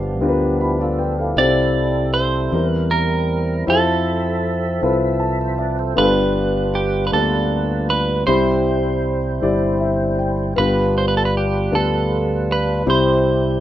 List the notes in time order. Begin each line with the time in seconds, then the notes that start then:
Already playing: G1 G2 F3 B3 D4 F4 G4 B4
0.21 D2 B3 D4 F4 G4 A#4
0.29 B4
0.61 E4 G4 B5
0.80 F4 A4 D5
0.99 B4 G5
1.19 E4 G4 A4 F5
1.36 C2 C3 G3 C4 D#4 E4 G4 A4 C5 D5
1.44 E4
2.14 C5
2.51 E2 E3 G3 C4 D#4 E4 G4 A#4 C5
2.56 A#4
2.62 E4
2.69 B4
2.91 A#4
3.66 F2 F3 C4 E4 F4 G4 G#4 A4 C5 E5
3.73 A4
4.82 C2 C4 E4 F4 A4 B4
5.20 A5
5.40 C5 E5
5.58 B4 D5 E5
5.79 A4 C5
5.96 G1 G2 G3 B3 D4 F4 G4 A4 A#4 B4
6.04 B4
6.75 G4
7.07 B4
7.11 D2 A#3 D4 F4 G4 A4 D5
7.18 B3
7.90 B4
8.26 C2 C3 G3 C4 E4 G4 C5 B5
9.41 G1 G3 C4 E4 G4 D5
9.80 E5
10.19 G5
10.56 G1 G2 G3 B3 D4 F4 G4 A#4 B4
10.63 B4
10.98 C5
11.08 B4
11.17 A4
11.25 B4
11.37 G4
11.71 D2 B3 D4 F4 G4 A4
12.52 B4
12.86 C2 C3 G3 C4 E4 G4 C5 B5